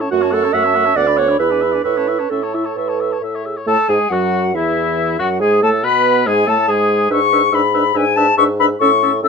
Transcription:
0.00 C#4 C#5 A5
0.11 F#2 A3 F#4 F#5 C#6
0.22 C#4 C#5 A5
0.31 A3 A4 F#5 C#6
0.43 C#4 C#5 A5
0.53 F#2 A3 E5 F#5 C#6
0.64 C#4 C#5 A5
0.75 A3 F#5 C#6
0.85 C#4 C#5 A5
0.96 D2 B3 D5 F#5 D6
1.07 D4 D5 B5
1.17 B3 C#5 F#5 D6
1.29 D4 D5 B5
1.39 E2 E4 B4 E5 B5
1.50 D4 D5 G#5
1.61 E4 E5 B5
1.72 D4 D5 G#5
1.84 A2 E4 B4 E5 C#6
1.97 C#4 C#5 A5
2.07 E4 E5 C#6
2.19 C#4 C#5 A5
2.30 A2 C#4 A4 E5 C#6
2.43 C#5 A5
2.53 E4 E5 C#6
2.64 C#5 A5
2.76 A2 B4 E5 C#6
2.88 C#5 A5
3.00 E5 C#6
3.11 C#5 A5
3.20 A2 A4 E5
3.35 C#5
3.45 G#4 E5
3.56 C#5
3.66 A2 A3 A4 A5
3.89 G#2 G#3 G#4 G#5
4.09 F#2 F#3 F#4 F#5
4.55 E2 E3 E4 E5
5.19 F#2 F#3 F#4 F#5
5.40 G#2 G#3 G#4 G#5
5.62 A2 A3 A4 A5
5.83 B2 B3 B4 B5
6.26 G#2 G#3 G#4 G#5
6.47 A2 A3 A4 A5
6.68 G#2 G#3 G#4 G#5
7.10 G#2 D4 B4 E5 C#6
7.32 D4 B4 E5
7.52 G#2 D4 B4 E5 B5
7.74 D4 B4 E5
7.94 G#2 D4 B4 E5 G#5
8.16 D4 B4 E5 A5
8.37 G#2 D4 B4 E5 C#6
8.59 D4 B4 E5 B5
8.80 A2 C#4 A4 E5 C#6
9.03 C#4 A4 E5
9.22 A2 C#4 A4 E5 E6

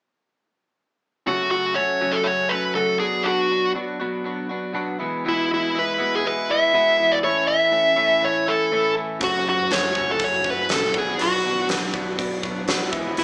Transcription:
1.27 F#2 C#3 F#3 A3 C#4 F#4
1.51 F#3 A3 C#4 F#4
1.75 F#3 A3 C#4 F#4 C#5
2.01 F#2 C#3 F#3 A3 C#4 F#4
2.12 A4
2.24 F#3 A3 C#4 F#4 C#5
2.49 F#3 A3 C#4 F#4 B4
2.75 F#2 C#3 F#3 A3 C#4 F#4 A4
2.98 B2 F#3 B3 D4 F#4 G#4
3.24 B2 F#3 B3 D4 F#4
3.50 B3 D4 F#4
3.75 F#3 B3 D4 F#4
4.00 B2 F#3 B3 D4 F#4
4.24 F#3 B3 D4 F#4
4.49 B3 D4 F#4
4.73 B2 F#3 B3 D4 F#4
4.99 E2 B2 E3 G#3 B3 E4
5.24 E2 B2 E3 G#3 B3 E4
5.28 E4
5.49 E3 G#3 B3 E4
5.54 E4
5.73 E3 G#3 B3 E4
5.79 B4
5.98 E2 B2 E3 G#3 B3 E4
6.15 G#4
6.24 E3 G#3 B3 E4 B4
6.49 E3 G#3 B3 E4 E5
6.73 E2 B2 E3 G#3 B3 E4
6.98 E3 G#3 B3 E4
7.12 D5
7.23 A2 E3 A3 C#4 E4 C#5
7.47 A3 C#4 E4 E5
7.71 E3 A3 C#4 E4
7.96 A2 E3 A3 C#4 E4
8.21 E3 A3 C#4 E4 C#5
8.46 A3 C#4 E4 A4
8.72 A2 E3 A3 C#4 E4
8.96 A3 C#4 E4
9.20 F#1 F#2 C#3 F#3 A3 C#4 F#4, kick, open hi-hat
9.45 F#1 F#3 A3 C#4 F#4
9.49 F#4
9.70 F#1 F#3 A3 C#4 F#4 C#5, snare, open hi-hat
9.95 F#1 F#2 C#3 F#3 A3 C#4 F#4, kick
10.11 A4
10.19 F#1 F#3 A3 C#4 F#4, kick, open hi-hat
10.24 C#5
10.44 F#1 F#3 A3 C#4 F#4, kick
10.50 B4
10.69 A#1 F#2 C#3 F#3 A3 C#4 F#4, snare, open hi-hat
10.73 A4
10.94 B1 B2 F#3 B3 D4 F#4, kick
10.98 G#4
11.18 B1 B2 F#3 B3 D4 F#4, open hi-hat
11.44 B1 B3 D4 F#4
11.68 B1 F#3 B3 D4 F#4, snare, open hi-hat
11.93 B1 B2 F#3 B3 D4 F#4, kick
12.17 B2 F#3 B3 D4 F#4, kick, open hi-hat
12.43 B1 B3 D4 F#4, kick
12.68 B1 B2 F#3 B3 D4 F#4, snare, open hi-hat
12.91 E1 E2 B2 E3 G#3 B3 E4, kick
13.17 E1 E2 B2 E3 G#3 B3 E4, open hi-hat

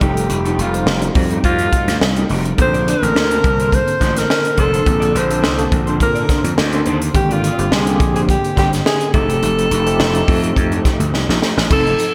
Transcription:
0.01 F1 G3 A3 D#4 F4 G4 A4, kick, closed hi-hat
0.17 A3 D#4 G4, closed hi-hat
0.29 F1, muted clean electric guitar stroke, closed hi-hat
0.45 A3 D#4 A4, closed hi-hat
0.58 F1 A3 D#4 F4 G4, closed hi-hat
0.73 G3 D#4 F4 C5, muted clean electric guitar stroke, closed hi-hat
0.86 F1 A3 D#4 G4, snare
1.01 G3 D#4 F4 F#4, muted clean electric guitar stroke, closed hi-hat
1.09 G4
1.15 F2, muted clean electric guitar stroke, kick, open hi-hat
1.31 A3 D#4 G4, closed hi-hat
1.44 F2 F4, muted clean electric guitar stroke, kick, closed hi-hat
1.59 A3 D#4 A4, closed hi-hat
1.73 A3 D#4 G4, kick, closed hi-hat
1.88 D2, muted clean electric guitar stroke, snare, closed hi-hat
2.01 C2, muted clean electric guitar stroke, snare
2.16 A3 D#4 G4, closed hi-hat
2.29 F1 A3 D#4 G4, open hi-hat
2.45 muted clean electric guitar stroke, closed hi-hat
2.57 A#1 D3 A#3 C4 A4 C5, muted clean electric guitar stroke, kick, closed hi-hat
2.73 D4 A4 D5, closed hi-hat
2.87 D4 A4 A#4 D5, closed hi-hat
3.02 A1 D3 A#3 C4 A4, muted clean electric guitar stroke, closed hi-hat
3.15 D2 D4 A4 C5, snare
3.30 D3 A#3 C4 A5, muted clean electric guitar stroke, closed hi-hat
3.43 C2, muted clean electric guitar stroke, kick, closed hi-hat
3.59 D4 A4 C5, closed hi-hat
3.72 C5, muted clean electric guitar stroke, kick, closed hi-hat
3.88 muted clean electric guitar stroke, closed hi-hat
4.00 A1 D4 A4 C5, kick, snare, closed hi-hat
4.16 A#4, muted clean electric guitar stroke, snare, closed hi-hat
4.29 muted clean electric guitar stroke, snare
4.44 muted clean electric guitar stroke, closed hi-hat
4.57 F1 D4 A4 C5, kick, closed hi-hat
4.72 D4 A4 C5, closed hi-hat
4.86 A#1 D3 A#3 C4 A4, muted clean electric guitar stroke, kick, closed hi-hat
5.00 D4 A4 D5, closed hi-hat
5.14 A#1 D4 A4 C5, closed hi-hat
5.29 D3 A#3 C4 A4, muted clean electric guitar stroke, closed hi-hat
5.42 C2 D4 A4 C5, snare
5.58 D3 A#3 C4 A5, muted clean electric guitar stroke, closed hi-hat
5.71 A#1, muted clean electric guitar stroke, kick, closed hi-hat
5.86 D4 A4 C5, closed hi-hat
6.00 A#2 A#4, muted clean electric guitar stroke, kick, closed hi-hat
6.15 D4 A4 D5, closed hi-hat
6.28 D4 A4 C5, kick, snare, closed hi-hat
6.44 F2, muted clean electric guitar stroke, closed hi-hat
6.57 D2, muted clean electric guitar stroke, snare
6.72 D4 A4 C5, closed hi-hat
6.85 D#2 D4 A4 C5, closed hi-hat
7.01 muted clean electric guitar stroke, closed hi-hat
7.14 G#1 D3 A#3 C4 G4, muted clean electric guitar stroke, kick, closed hi-hat
7.29 D4 F4 G4 D5, closed hi-hat
7.42 D4 G4 D5, closed hi-hat
7.57 G1 D3 A#3 C4 G4, muted clean electric guitar stroke, closed hi-hat
7.71 C2 D4 G4 G#4 C5, snare
7.86 D3 A#3 C4 G4, muted clean electric guitar stroke, closed hi-hat
7.99 A#1, muted clean electric guitar stroke, kick, closed hi-hat
8.14 D4 G4 G#4 C5, closed hi-hat
8.27 G4, muted clean electric guitar stroke, kick, closed hi-hat
8.43 muted clean electric guitar stroke, closed hi-hat
8.55 G1 D4 G4 C5, kick, snare, closed hi-hat
8.72 muted clean electric guitar stroke, snare, closed hi-hat
8.85 G#4, muted clean electric guitar stroke, snare
9.00 muted clean electric guitar stroke, closed hi-hat
9.13 F1 F3 A3 D#4 G4 A4, kick, closed hi-hat
9.28 A3 D#4 G4, closed hi-hat
9.42 F1, muted clean electric guitar stroke, closed hi-hat
9.57 A3 D#4 A4, closed hi-hat
9.70 F1 A3 D#4 G4, closed hi-hat
9.86 F3 A3 D#4 G4, muted clean electric guitar stroke, closed hi-hat
9.99 F1 A3 D#4 G4, snare
10.14 F3 A3 D#4 F4, muted clean electric guitar stroke, closed hi-hat
10.28 F2, muted clean electric guitar stroke, kick, open hi-hat
10.43 A3 D#4 G4, closed hi-hat
10.56 F2, muted clean electric guitar stroke, kick, closed hi-hat
10.71 A3 D#4 A4, closed hi-hat
10.84 A3 D#4 G4, kick, snare, closed hi-hat
11.00 D2, muted clean electric guitar stroke, closed hi-hat
11.13 C2, muted clean electric guitar stroke, snare
11.28 A#1 A3 D#4 G4, snare
11.41 A3 D#4 G4, snare
11.57 A1, muted clean electric guitar stroke, snare
11.70 F1 F3 C4 D#4 A4, kick, crash, tambourine
11.85 muted clean electric guitar stroke, closed hi-hat
11.98 muted clean electric guitar stroke, closed hi-hat, tambourine

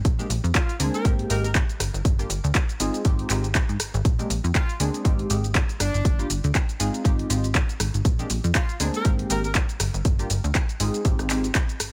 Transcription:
0.05 kick, closed hi-hat, shaker
0.19 G#3 A#3 C4 D4 G4, closed hi-hat, shaker
0.29 A#1, open hi-hat, shaker
0.44 F2, closed hi-hat, shaker
0.55 F4, kick, clap, closed hi-hat, shaker
0.69 closed hi-hat, shaker
0.79 D2 G#3 A#3 C4 D4 G#4, open hi-hat, shaker
0.94 A#4, closed hi-hat, shaker
1.04 G#1 G#3 A#3 C4 D#4 G4, kick, closed hi-hat, shaker
1.19 closed hi-hat
1.29 G#1 G#3 A#3 C4 D#4 G4 A#4, open hi-hat, shaker
1.44 A#4, closed hi-hat, shaker
1.55 kick, clap, closed hi-hat, shaker
1.69 closed hi-hat, shaker
1.80 G1, cross-stick, open hi-hat, shaker
1.94 G1, closed hi-hat, shaker
2.05 G1, kick, closed hi-hat, shaker
2.19 G3 A#3 D4 F4 G4, closed hi-hat, shaker
2.30 G1, open hi-hat, shaker
2.44 D2, closed hi-hat, shaker
2.55 kick, clap, closed hi-hat, shaker
2.69 closed hi-hat, shaker
2.80 G#1 G#3 C4 D#4 F4 G#4, open hi-hat, shaker
2.94 closed hi-hat, shaker
3.05 G#1 G#3 C4 D#4 F4 G4, kick, closed hi-hat, shaker
3.19 closed hi-hat
3.29 G#1 G#3 C4 D#4 F4 G4, clap, open hi-hat, shaker
3.44 closed hi-hat, shaker
3.55 kick, clap, closed hi-hat, shaker
3.69 G#2, closed hi-hat, shaker
3.80 G#1, cross-stick, open hi-hat, shaker
3.94 G#1, closed hi-hat, shaker
4.05 A#1, kick, closed hi-hat, shaker
4.19 G#3 A#3 C4 D4 G4, closed hi-hat, shaker
4.30 A#1, open hi-hat, shaker
4.44 F2, closed hi-hat, shaker
4.55 F4, kick, clap, closed hi-hat, shaker
4.69 closed hi-hat, shaker
4.80 D2 G#3 A#3 C4 D4 G#4, open hi-hat, shaker
4.94 closed hi-hat, shaker
5.04 G#1 G#3 A#3 C4 D#4 G4, kick, closed hi-hat, shaker
5.19 closed hi-hat
5.30 G#1 G#3 A#3 C4 D#4 G4, open hi-hat, shaker
5.44 closed hi-hat, shaker
5.55 kick, clap, closed hi-hat, shaker
5.69 closed hi-hat, shaker
5.80 G1 D4, cross-stick, open hi-hat, shaker
5.94 G1, closed hi-hat, shaker
6.05 G1, kick, closed hi-hat, shaker
6.19 G3 A#3 D4 F4 G4, closed hi-hat, shaker
6.30 G1, open hi-hat, shaker
6.44 D2, closed hi-hat, shaker
6.55 kick, clap, closed hi-hat, shaker
6.69 closed hi-hat, shaker
6.79 G#1 G#3 C4 D#4 F4 G#4, open hi-hat, shaker
6.94 closed hi-hat, shaker
7.04 G#1 G#3 C4 D#4 F4 G4, kick, closed hi-hat, shaker
7.19 closed hi-hat
7.30 G#1 G#3 C4 D#4 F4 G4, open hi-hat, shaker
7.44 closed hi-hat, shaker
7.55 kick, clap, closed hi-hat, shaker
7.69 closed hi-hat, shaker
7.80 G#1, cross-stick, open hi-hat, shaker
7.94 G#1, closed hi-hat, shaker
8.05 A#1, kick, closed hi-hat, shaker
8.19 G#3 A#3 C4 D4 G4, closed hi-hat, shaker
8.30 A#1, open hi-hat, shaker
8.44 F2, closed hi-hat, shaker
8.55 F4, kick, clap, closed hi-hat, shaker
8.69 closed hi-hat, shaker
8.80 D2 G#3 A#3 C4 D4 G#4, open hi-hat, shaker
8.94 A#4, closed hi-hat, shaker
9.05 G#1 G#3 A#3 C4 D#4 G4, kick, closed hi-hat, shaker
9.19 closed hi-hat
9.30 G#1 G#3 A#3 C4 D#4 G4 A#4, open hi-hat, shaker
9.44 A#4, closed hi-hat, shaker
9.55 kick, clap, closed hi-hat, shaker
9.69 closed hi-hat, shaker
9.80 G1, cross-stick, open hi-hat, shaker
9.94 G1, closed hi-hat, shaker
10.05 G1, kick, closed hi-hat, shaker
10.19 G3 A#3 D4 F4 G4, closed hi-hat, shaker
10.30 G1, open hi-hat, shaker
10.44 D2, closed hi-hat, shaker
10.55 kick, clap, closed hi-hat, shaker
10.69 closed hi-hat, shaker
10.80 G#1 G#3 C4 D#4 F4 G#4, open hi-hat, shaker
10.94 closed hi-hat, shaker
11.05 G#1 G#3 C4 D#4 F4 G4, kick, closed hi-hat, shaker
11.19 G#1, cross-stick, closed hi-hat, shaker
11.30 G#3 C4 D#4 F4 G4, clap, open hi-hat, shaker
11.44 closed hi-hat, shaker
11.55 kick, clap, closed hi-hat, shaker
11.69 closed hi-hat, shaker
11.80 G#1, cross-stick, open hi-hat, shaker

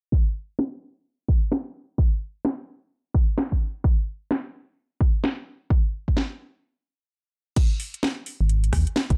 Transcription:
0.12 kick
0.59 snare
1.29 kick
1.52 snare
1.98 kick
2.45 snare
3.15 kick
3.38 snare
3.52 kick
3.84 kick
4.31 snare
5.01 kick
5.24 snare
5.70 kick
6.08 kick
6.17 snare
7.56 kick, closed hi-hat, crash
7.80 open hi-hat
7.94 closed hi-hat
8.03 snare
8.26 open hi-hat
8.41 G#1
8.49 closed hi-hat
8.64 closed hi-hat
8.73 D#2, kick, cross-stick, open hi-hat
8.87 closed hi-hat
8.96 snare
9.10 G#1, kick, closed hi-hat

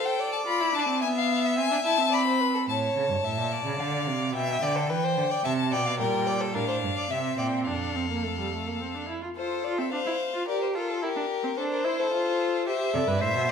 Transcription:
Already playing: A4 C5
0.05 G5
0.19 D5
0.32 A5
0.47 F4 B5
0.60 E4
0.75 D4 A5
0.88 C4
1.02 B3 E5 G#5
1.16 F5
1.45 E5
1.57 C4 G#5
1.71 D4
1.85 E4 A5
1.98 C4
2.12 D5 B5
2.26 C5
2.41 B4
2.55 A4
2.68 A2 C#5 A5
2.96 C#3
3.10 G2
3.24 A2 E5
3.38 A#2
3.52 D5
3.65 C#3
3.79 D3 F5
4.07 C3
4.34 B2 E5 G5
4.62 D3 D5
4.76 A4
4.89 E3 B4 G5
5.04 C5
5.17 D3
5.31 D5
5.44 C3 E5 A5
5.71 B2 D5 G5
5.86 F5
5.99 A#2 G3 A#4 G5
6.26 D5
6.41 A4
6.54 A2 D4 A#4 F5
6.68 C5
6.83 G2
6.96 D5
7.10 C3 C4 E5
7.38 A#2 D5 G5
7.67 F2 D4 A4 F5
7.95 C4
8.10 A#3
8.25 A3
8.39 G3
8.54 A3
8.67 A#3
8.80 C4
8.95 D4
9.09 E4
9.23 F4
9.36 F4 A4 C5
9.64 F4 D5
9.78 C4 E5
9.92 D4 C5 F5
10.06 E4
10.33 F4
10.48 G4 A#4 D5
10.62 C5
10.75 F4 A4 A#4
10.90 A4
11.02 E4 G4 A#4
11.16 D4
11.43 C4
11.57 D4 A4 C5
11.71 A#4
11.84 E4 C5
11.99 A4
12.11 F4
12.66 G4 C5 E5
12.94 C3 A4 D5
13.08 G2 B4
13.21 A2 C5 E5
13.35 B2

